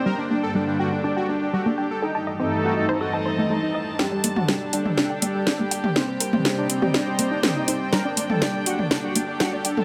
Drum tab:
HH |----------------|----------------|--o---o---o---o-|--o---o---o---o-|
SD |----------------|----------------|o---o---o---o---|o---o---o---o---|
T2 |----------------|----------------|---o---o-------o|---o---o----o---|

HH |--o---o---o---o-|
SD |o---o---o---o---|
T2 |---o---o-------o|